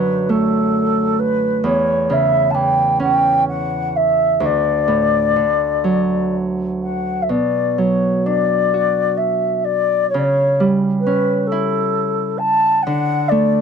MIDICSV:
0, 0, Header, 1, 3, 480
1, 0, Start_track
1, 0, Tempo, 892857
1, 874, Time_signature, 6, 3, 24, 8
1, 874, Tempo, 921659
1, 1834, Tempo, 958466
1, 4234, Tempo, 937500
1, 5194, Tempo, 916031
1, 6154, Tempo, 890208
1, 7041, End_track
2, 0, Start_track
2, 0, Title_t, "Flute"
2, 0, Program_c, 0, 73
2, 0, Note_on_c, 0, 71, 60
2, 161, Note_on_c, 0, 69, 67
2, 169, Note_off_c, 0, 71, 0
2, 641, Note_on_c, 0, 71, 67
2, 649, Note_off_c, 0, 69, 0
2, 879, Note_off_c, 0, 71, 0
2, 890, Note_on_c, 0, 73, 74
2, 1133, Note_on_c, 0, 76, 73
2, 1141, Note_off_c, 0, 73, 0
2, 1332, Note_on_c, 0, 81, 59
2, 1340, Note_off_c, 0, 76, 0
2, 1353, Note_on_c, 0, 79, 80
2, 1361, Note_off_c, 0, 81, 0
2, 1593, Note_off_c, 0, 79, 0
2, 1596, Note_on_c, 0, 79, 78
2, 1819, Note_off_c, 0, 79, 0
2, 1842, Note_on_c, 0, 78, 81
2, 2081, Note_on_c, 0, 76, 75
2, 2088, Note_off_c, 0, 78, 0
2, 2324, Note_on_c, 0, 74, 70
2, 2332, Note_off_c, 0, 76, 0
2, 3275, Note_off_c, 0, 74, 0
2, 3514, Note_on_c, 0, 78, 53
2, 3714, Note_on_c, 0, 76, 36
2, 3721, Note_off_c, 0, 78, 0
2, 3752, Note_on_c, 0, 74, 56
2, 3760, Note_off_c, 0, 76, 0
2, 3994, Note_on_c, 0, 73, 55
2, 4001, Note_off_c, 0, 74, 0
2, 4231, Note_on_c, 0, 74, 64
2, 4238, Note_off_c, 0, 73, 0
2, 4700, Note_on_c, 0, 76, 59
2, 4708, Note_off_c, 0, 74, 0
2, 4942, Note_on_c, 0, 74, 66
2, 4949, Note_off_c, 0, 76, 0
2, 5168, Note_off_c, 0, 74, 0
2, 5171, Note_on_c, 0, 73, 68
2, 5221, Note_on_c, 0, 74, 56
2, 5229, Note_off_c, 0, 73, 0
2, 5247, Note_on_c, 0, 73, 68
2, 5254, Note_off_c, 0, 74, 0
2, 5531, Note_off_c, 0, 73, 0
2, 5646, Note_on_c, 0, 71, 74
2, 5891, Note_on_c, 0, 69, 73
2, 5899, Note_off_c, 0, 71, 0
2, 6377, Note_on_c, 0, 81, 94
2, 6385, Note_off_c, 0, 69, 0
2, 6616, Note_on_c, 0, 78, 85
2, 6624, Note_off_c, 0, 81, 0
2, 6865, Note_on_c, 0, 74, 76
2, 6873, Note_off_c, 0, 78, 0
2, 7041, Note_off_c, 0, 74, 0
2, 7041, End_track
3, 0, Start_track
3, 0, Title_t, "Harp"
3, 0, Program_c, 1, 46
3, 0, Note_on_c, 1, 42, 41
3, 0, Note_on_c, 1, 50, 42
3, 0, Note_on_c, 1, 54, 41
3, 157, Note_on_c, 1, 57, 42
3, 880, Note_on_c, 1, 40, 50
3, 900, Note_off_c, 1, 42, 0
3, 900, Note_off_c, 1, 50, 0
3, 900, Note_off_c, 1, 54, 0
3, 1119, Note_on_c, 1, 49, 45
3, 1352, Note_on_c, 1, 52, 41
3, 1587, Note_on_c, 1, 61, 47
3, 1910, Note_off_c, 1, 57, 0
3, 2301, Note_on_c, 1, 38, 49
3, 2329, Note_off_c, 1, 40, 0
3, 2329, Note_off_c, 1, 49, 0
3, 2329, Note_off_c, 1, 52, 0
3, 2331, Note_off_c, 1, 61, 0
3, 2539, Note_on_c, 1, 45, 43
3, 2780, Note_on_c, 1, 50, 37
3, 2807, Note_off_c, 1, 45, 0
3, 3021, Note_on_c, 1, 54, 39
3, 3748, Note_on_c, 1, 47, 41
3, 3777, Note_off_c, 1, 38, 0
3, 3777, Note_off_c, 1, 50, 0
3, 3777, Note_off_c, 1, 54, 0
3, 3993, Note_on_c, 1, 54, 34
3, 4233, Note_on_c, 1, 62, 34
3, 4478, Note_on_c, 1, 66, 39
3, 5196, Note_on_c, 1, 49, 51
3, 5222, Note_off_c, 1, 47, 0
3, 5222, Note_off_c, 1, 54, 0
3, 5228, Note_off_c, 1, 62, 0
3, 5437, Note_on_c, 1, 55, 43
3, 5469, Note_off_c, 1, 66, 0
3, 5680, Note_on_c, 1, 61, 41
3, 5918, Note_on_c, 1, 64, 52
3, 6638, Note_on_c, 1, 50, 55
3, 6665, Note_off_c, 1, 49, 0
3, 6665, Note_off_c, 1, 55, 0
3, 6671, Note_off_c, 1, 61, 0
3, 6879, Note_on_c, 1, 57, 47
3, 7041, Note_off_c, 1, 50, 0
3, 7041, Note_off_c, 1, 57, 0
3, 7041, Note_off_c, 1, 64, 0
3, 7041, End_track
0, 0, End_of_file